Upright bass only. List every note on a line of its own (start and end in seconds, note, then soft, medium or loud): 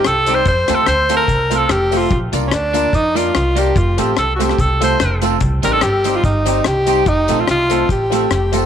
0.06 0.40 C2 medium
0.46 0.65 F2 loud
0.69 0.85 D#2 loud
0.87 1.22 D2 medium
1.28 1.63 C2 medium
1.70 2.05 F1 medium
2.11 2.30 A#1 loud
2.33 2.49 C2 loud
2.52 2.87 D2 medium
2.93 3.28 F2 medium
3.35 3.70 C2 medium
3.76 3.95 F1 loud
3.99 4.15 A1 loud
4.18 4.53 C2 medium
4.59 4.94 C2 loud
5.01 5.36 F1 loud
5.41 5.60 C2 loud
5.64 5.80 A1 medium
5.83 6.18 G1 medium
6.24 6.59 G1 medium
6.66 7.01 C2 medium
7.07 7.25 F1 loud
7.29 7.45 A#1 loud
7.48 7.83 C2 medium
7.89 8.24 A1 loud
8.31 8.66 F1 medium